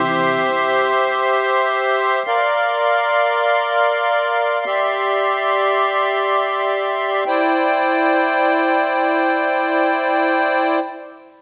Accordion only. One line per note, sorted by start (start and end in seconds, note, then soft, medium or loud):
0.00 2.23 G4 medium
0.00 2.23 C5 medium
0.00 2.23 E5 medium
0.00 7.23 C6 medium
2.27 4.64 A#4 medium
2.27 4.64 D5 medium
2.27 4.64 F5 medium
4.66 7.24 G4 medium
4.66 7.24 D5 medium
4.66 7.24 E5 soft
7.26 10.80 E4 medium
7.26 10.80 C5 soft
7.26 10.80 D5 medium
7.26 10.79 G5 medium